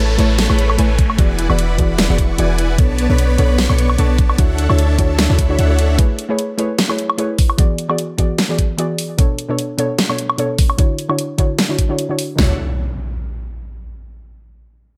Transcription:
Already playing: 808-style bass A1, supersaw synth A3 A4 B4 C#5 A5, downlifter
0.18 808-style bass A1, synth pluck A3 E4 G#4 B4 C#5, supersaw synth A3 A4 B4 C#5 A5, closed hi-hat
0.39 snare, closed hi-hat
0.49 808-style bass A1, synth pluck A3 E4 G#4 B4 C#5, supersaw synth A3 A4 B4 C#5 B5, high woodblock
0.59 closed hi-hat
0.70 high woodblock
0.78 808-style bass A1, synth pluck A3 E4 B4 C#5 G#5, supersaw synth A3 A4 B4 C#5 G#5, closed hi-hat
0.99 kick, closed hi-hat
1.10 high woodblock
1.18 808-style bass E1, synth pluck E3 B3 F#4 G#4 D5, supersaw synth E4 B4 D5 F#5 G#5, kick, closed hi-hat
1.39 closed hi-hat
1.49 808-style bass E1, synth pluck E3 B3 F#4 G#4 D5, supersaw synth E4 B4 D5 F#5 B5, high woodblock
1.59 closed hi-hat
1.78 808-style bass E1, synth pluck E3 B3 F#4 G#4 D5, supersaw synth E4 B4 D5 F#5 B5, kick, closed hi-hat
1.98 snare, closed hi-hat
2.09 808-style bass E1, synth pluck E3 B3 F#4 G#4 D5, supersaw synth E4 B4 D5 F#5 C#6
2.18 kick, closed hi-hat
2.38 808-style bass E1, synth pluck E3 B3 F#4 G#4 D5, supersaw synth E4 B4 D5 F#5 G#5, closed hi-hat
2.58 closed hi-hat
2.77 808-style bass B1, synth pluck B2 B3 D4 A4 C#5, supersaw synth B3 B4 C#5 D5 A5, kick, closed hi-hat
2.98 closed hi-hat
3.09 808-style bass B1, synth pluck B2 B3 D4 A4 C#5, supersaw synth B3 B4 C#5 D5 B5
3.18 closed hi-hat
3.38 808-style bass B1, synth pluck B2 B3 D4 A4 C#5, supersaw synth B3 B4 C#5 D5 B5, closed hi-hat
3.58 snare, closed hi-hat
3.69 808-style bass B1, synth pluck B2 B3 D4 A4 C#5, supersaw synth B3 B4 C#5 D5 C#6, high woodblock
3.78 closed hi-hat
3.90 high woodblock
3.97 808-style bass B1, synth pluck B2 B3 D4 A4 C#6, supersaw synth B3 B4 C#5 D5 A5, closed hi-hat
4.18 kick, closed hi-hat
4.29 high woodblock
4.38 808-style bass D2, synth pluck D3 D4 E4 F#4 C#5, supersaw synth D4 A4 C#5 E5 F#5, kick, closed hi-hat
4.58 closed hi-hat
4.69 808-style bass D2, synth pluck D3 D4 E4 F#4 C#5, supersaw synth D4 A4 C#5 E5 A5, high woodblock
4.79 closed hi-hat
4.98 808-style bass D2, synth pluck D3 D4 E4 F#4 C#5, supersaw synth D4 A4 C#5 E5 A5, kick, closed hi-hat
5.19 snare, closed hi-hat
5.29 808-style bass D2, synth pluck D3 D4 E4 F#4 C#5, supersaw synth D4 A4 C#5 E5 B5
5.39 kick, closed hi-hat
5.49 synth pluck D3 D4 E4 F#4 C#5
5.58 808-style bass D2, supersaw synth D4 A4 C#5 E5 F#5, closed hi-hat
5.69 synth pluck D3 D4 E4 F#4 C#5
5.79 closed hi-hat
5.98 synth pluck A3 E4 G#4 B4 C#5, kick, closed hi-hat
6.19 closed hi-hat
6.29 synth pluck A3 E4 G#4 B4 C#5
6.39 closed hi-hat
6.57 synth pluck A3 E4 G#4 B4 C#5, closed hi-hat
6.79 snare, closed hi-hat
6.89 synth pluck A3 E4 G#4 B4 C#5, high woodblock
6.99 closed hi-hat
7.10 high woodblock
7.17 synth pluck A3 E4 G#4 B4 C#5, closed hi-hat
7.38 kick, open hi-hat
7.50 high woodblock
7.57 synth pluck E3 B3 F#4 G#4 D5, kick, closed hi-hat
7.78 closed hi-hat
7.89 synth pluck E3 B3 F#4 G#4 D5, high woodblock
7.98 closed hi-hat
8.18 synth pluck E3 B3 F#4 G#4 D5, kick, closed hi-hat
8.38 snare, closed hi-hat
8.49 synth pluck E3 B3 F#4 G#4 D5
8.59 kick, closed hi-hat
8.78 synth pluck E3 B3 F#4 G#4 D5, closed hi-hat
8.98 open hi-hat
9.18 synth pluck B2 B3 D4 A4 C#5, kick, closed hi-hat
9.39 closed hi-hat
9.49 synth pluck B2 B3 D4 A4 C#5
9.59 closed hi-hat
9.78 synth pluck B2 B3 D4 A4 C#5, closed hi-hat
9.99 snare, closed hi-hat
10.09 synth pluck B2 B3 D4 A4 C#5, high woodblock
10.18 closed hi-hat
10.30 high woodblock
10.38 synth pluck B2 B3 D4 A4 C#5, closed hi-hat
10.58 kick, open hi-hat
10.70 high woodblock
10.77 synth pluck D3 D4 E4 F#4 C#5, kick, closed hi-hat
10.99 closed hi-hat
11.09 synth pluck D3 D4 E4 F#4 C#5, high woodblock
11.19 closed hi-hat
11.38 synth pluck D3 D4 E4 F#4 C#5, kick, closed hi-hat
11.59 snare, closed hi-hat
11.69 synth pluck D3 D4 E4 F#4 C#5
11.79 kick, closed hi-hat
11.89 synth pluck D3 D4 E4 F#4 C#5
11.99 closed hi-hat
12.09 synth pluck D3 D4 E4 F#4 C#5
12.19 open hi-hat
12.36 808-style bass D2, synth pluck D3 D4 E4, supersaw synth D4 A4 C#5 E5 F#5, kick, snare, impact
12.40 synth pluck F#4 C#5

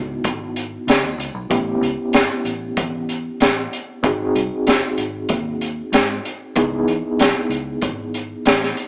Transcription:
Already playing: fingered electric bass C#2, reed electric piano B3 D#4 E4 F#4
0.24 fingered electric bass G#1, kick, closed hi-hat
0.56 closed hi-hat
0.87 fingered electric bass C#3, snare, closed hi-hat
1.03 fingered electric bass D#2
1.18 fingered electric bass C#2, closed hi-hat
1.34 fingered electric bass B1
1.50 fingered electric bass A1, reed electric piano B3 C#4 E4 G4, kick, closed hi-hat
1.81 fingered electric bass C#2, closed hi-hat
2.13 fingered electric bass G1, snare, closed hi-hat
2.45 fingered electric bass A1, closed hi-hat
2.77 fingered electric bass E2, kick, closed hi-hat
3.09 closed hi-hat
3.40 fingered electric bass A1, snare, closed hi-hat
3.73 closed hi-hat
4.03 fingered electric bass G#1, reed electric piano C4 D#4 F#4 G#4, kick, closed hi-hat
4.35 fingered electric bass C2, closed hi-hat
4.67 fingered electric bass F#1, snare, closed hi-hat
4.98 fingered electric bass G#1, closed hi-hat
5.29 fingered electric bass D#2, kick, closed hi-hat
5.61 closed hi-hat
5.92 fingered electric bass G#2, snare, closed hi-hat
6.25 closed hi-hat
6.56 fingered electric bass C#2, reed electric piano B3 D#4 E4 G#4, kick, closed hi-hat
6.88 fingered electric bass E2, closed hi-hat
7.19 fingered electric bass B1, snare, closed hi-hat
7.50 fingered electric bass C#2, closed hi-hat
7.82 fingered electric bass G#1, kick, closed hi-hat
8.14 closed hi-hat
8.45 fingered electric bass A1, snare, closed hi-hat
8.63 snare
8.77 closed hi-hat

